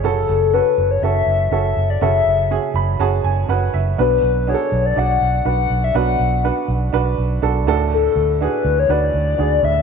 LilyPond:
<<
  \new Staff \with { instrumentName = "Soft synth lead" } { \time 4/4 \key fis \minor \tempo 4 = 122 a'4 b'8. cis''16 e''4 e''8. d''16 | e''4. r2 r8 | b'4 cis''8. d''16 fis''4 fis''8. e''16 | fis''4. r2 r8 |
a'4 b'8. cis''16 d''4. e''8 | }
  \new Staff \with { instrumentName = "Upright piano" } { \time 4/4 \key fis \minor << { <gis' cis''>8 r2. r8 | r4. b''8 a''8 gis''8 fis''8 e''8 | r1 | r1 |
r1 | } \\ { <cis' fis' a'>4 <cis' fis' a'>4 <cis' fis' a'>4 <cis' fis' a'>4 | <cis' fis' a'>4 <cis' fis' gis'>4 <cis' fis' gis'>4 <cis' fis' b'>4 | <d' fis' b'>4 <d' fis' gis' a'>4 <d' fis' d''>4 <d' fis' b'>4 | <d' fis' b'>4 <d' fis' b'>4 <d' fis' b'>4 <d' fis' a'>8 <d' fis' a'>8~ |
<d' fis' a'>8 r8 <d' fis' gis'>4 <d' fis' b'>4 <d' fis' gis'>4 | } >> }
  \new Staff \with { instrumentName = "Upright piano" } { \clef bass \time 4/4 \key fis \minor cis4. r2 r8 | cis4. r2 r8 | <b, fis>4. r2 r8 | <b, fis>4. r2 a,8~ |
a,4 r2 r8 a,8 | }
  \new Staff \with { instrumentName = "Fingered electric bass" } { \clef bass \time 4/4 \key fis \minor fis,,8 fis,,8. r16 fis,,8 fis,,8 fis,,8 fis,,8 fis,,8 | fis,,8 fis,,8. r16 fis,,8 fis,,8 fis,,8 fis,,8 fis,,8 | b,,8 b,,8. r16 b,,8 b,,8 b,,8 b,,8 b,,8 | b,,8 b,,8. r16 b,,8 b,,8 b,,8 b,,8 d,8~ |
d,8 d,8. r16 d,8 d,8 d,8 d,8 d,8 | }
>>